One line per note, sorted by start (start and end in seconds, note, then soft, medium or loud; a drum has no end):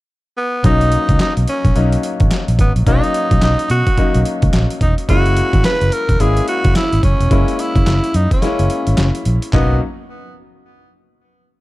0.37 0.63 B3 medium
0.64 0.96 B1 loud
0.64 1.53 F#3 medium
0.64 1.53 A#3 medium
0.64 1.53 C#4 medium
0.64 1.17 D#4 loud
0.64 1.54 D#4 medium
0.64 kick loud
0.64 closed hi-hat medium
0.81 closed hi-hat medium
0.92 closed hi-hat medium
1.09 1.17 C#2 medium
1.09 kick loud
1.09 closed hi-hat soft
1.19 1.33 D#4 loud
1.19 snare loud
1.19 clap medium
1.19 closed hi-hat medium
1.37 1.45 B1 medium
1.37 closed hi-hat soft
1.48 2.00 C#4 medium
1.48 closed hi-hat medium
1.65 1.72 A#1 medium
1.65 kick medium
1.65 closed hi-hat medium
1.75 1.95 B1 medium
1.75 2.64 F#3 medium
1.75 2.64 A#3 medium
1.75 2.64 C#4 medium
1.75 2.65 D#4 medium
1.75 closed hi-hat medium
1.92 closed hi-hat medium
2.03 closed hi-hat medium
2.20 2.28 G#1 medium
2.20 kick medium
2.20 closed hi-hat soft
2.31 snare loud
2.31 clap medium
2.31 closed hi-hat medium
2.48 2.56 A#1 medium
2.48 closed hi-hat medium
2.59 2.71 G#1 medium
2.59 2.73 B3 medium
2.59 kick medium
2.59 closed hi-hat medium
2.76 2.83 A#1 medium
2.76 closed hi-hat medium
2.87 2.99 B1 loud
2.87 3.75 F#3 medium
2.87 3.75 A#3 medium
2.87 3.75 C#4 medium
2.87 3.76 D#4 medium
2.87 3.39 D#4 loud
2.87 kick loud
2.87 closed hi-hat medium
3.04 closed hi-hat medium
3.14 closed hi-hat medium
3.31 3.39 B1 medium
3.31 kick loud
3.31 closed hi-hat soft
3.42 3.54 B1 medium
3.42 3.69 D#4 loud
3.42 snare loud
3.42 clap medium
3.42 closed hi-hat medium
3.59 closed hi-hat soft
3.70 3.82 B2 medium
3.70 4.22 F#4 loud
3.70 closed hi-hat medium
3.87 kick medium
3.87 closed hi-hat medium
3.97 4.86 F#3 medium
3.97 4.86 A#3 medium
3.97 4.86 C#4 medium
3.97 4.87 D#4 medium
3.97 muted fingered electric bass stroke soft
3.97 kick medium
3.97 closed hi-hat medium
4.14 4.23 B1 medium
4.14 closed hi-hat medium
4.25 closed hi-hat medium
4.42 4.50 C#2 medium
4.42 kick medium
4.42 closed hi-hat medium
4.53 4.65 A#1 medium
4.53 snare loud
4.53 clap medium
4.53 closed hi-hat medium
4.70 closed hi-hat medium
4.81 4.93 E1 medium
4.81 4.95 D#4 medium
4.81 kick medium
4.81 closed hi-hat medium
4.98 closed hi-hat medium
5.08 5.40 F#1 loud
5.08 5.97 G#3 medium
5.08 5.97 A#3 medium
5.08 5.98 C#4 medium
5.08 5.98 E4 medium
5.08 5.61 F#4 loud
5.08 kick loud
5.08 closed hi-hat medium
5.26 closed hi-hat soft
5.37 closed hi-hat medium
5.53 5.61 G#1 medium
5.53 kick medium
5.53 closed hi-hat soft
5.64 5.94 B4 loud
5.64 snare loud
5.64 clap medium
5.64 closed hi-hat medium
5.81 5.89 F#1 medium
5.81 closed hi-hat soft
5.92 6.22 A#4 loud
5.92 closed hi-hat medium
6.09 6.17 E1 medium
6.09 kick medium
6.09 closed hi-hat medium
6.19 6.39 G#1 loud
6.19 7.08 G#3 medium
6.19 7.08 A#3 medium
6.19 7.09 C#4 medium
6.19 7.09 E4 medium
6.19 6.48 G#4 loud
6.19 closed hi-hat medium
6.37 closed hi-hat medium
6.48 6.74 F#4 loud
6.48 closed hi-hat medium
6.64 6.72 F#1 medium
6.64 kick loud
6.64 closed hi-hat medium
6.75 7.02 E4 medium
6.75 snare loud
6.75 clap medium
6.75 closed hi-hat medium
6.93 7.00 G#1 medium
6.93 closed hi-hat medium
7.03 7.15 F#1 medium
7.03 7.61 C#4 medium
7.03 kick medium
7.03 closed hi-hat medium
7.20 7.28 E1 medium
7.20 closed hi-hat medium
7.31 7.43 F#1 loud
7.31 8.19 G#3 medium
7.31 8.20 A#3 medium
7.31 8.20 C#4 medium
7.31 8.20 E4 medium
7.31 kick loud
7.31 closed hi-hat medium
7.48 closed hi-hat medium
7.59 8.17 E4 medium
7.59 closed hi-hat medium
7.76 7.83 F#1 loud
7.76 kick loud
7.76 closed hi-hat soft
7.87 7.99 F#1 medium
7.87 snare loud
7.87 clap medium
7.87 closed hi-hat medium
8.04 closed hi-hat soft
8.14 8.26 F#2 medium
8.14 8.32 D#4 medium
8.14 closed hi-hat medium
8.31 9.11 C#4 medium
8.31 kick medium
8.31 closed hi-hat medium
8.42 9.31 G#3 medium
8.42 9.31 A#3 medium
8.42 9.31 C#4 medium
8.42 9.31 E4 medium
8.42 muted fingered electric bass stroke soft
8.42 snare medium
8.42 closed hi-hat medium
8.59 8.67 F#1 medium
8.59 closed hi-hat medium
8.70 closed hi-hat medium
8.87 8.95 G#1 medium
8.87 closed hi-hat soft
8.97 9.10 F#1 medium
8.97 snare loud
8.97 clap medium
8.97 closed hi-hat medium
9.15 closed hi-hat medium
9.25 9.38 A#1 medium
9.25 closed hi-hat medium
9.42 closed hi-hat medium
9.53 9.79 B1 loud
9.53 9.79 F#3 medium
9.53 9.79 A#3 medium
9.53 9.79 B3 medium
9.53 9.79 C#4 medium
9.53 9.79 D#4 medium
9.53 kick loud
9.53 clap medium
9.53 floor tom loud